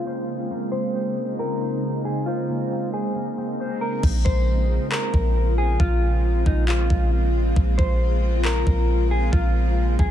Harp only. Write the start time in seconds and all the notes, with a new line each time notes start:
Already playing: A#3 C4
0.07 C5
0.51 A#3
0.72 C4
0.95 C5
1.39 C4
1.61 C5
2.05 C4
2.27 C5
2.49 A#3
2.72 C4
2.93 C5
3.15 A#3
3.37 C4
3.60 C5